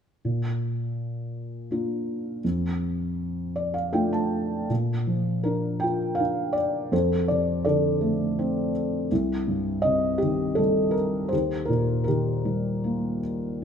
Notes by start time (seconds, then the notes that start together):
0.25 A#2
1.71 A#3 D4 F4
2.44 F2
3.56 D5
3.74 F5
3.92 A3 D4 F4 G5
4.13 A5
4.70 A#2
5.07 F3
5.43 D4 A#4
5.80 F4 G5
6.15 F5
6.20 D4
6.53 D5
6.92 F2 A4 C5
7.28 C3 D5
7.64 D3 A4 D5
8.01 A3
8.39 C4
9.12 C2
9.48 G2
9.82 C3 D#5
10.18 G4
10.22 D#3
10.55 G3 A4
10.91 A#4
11.29 D#2 G4 C5
11.65 A#2 A#4
12.04 D#3 G4 A#4
12.45 G3
12.84 A#3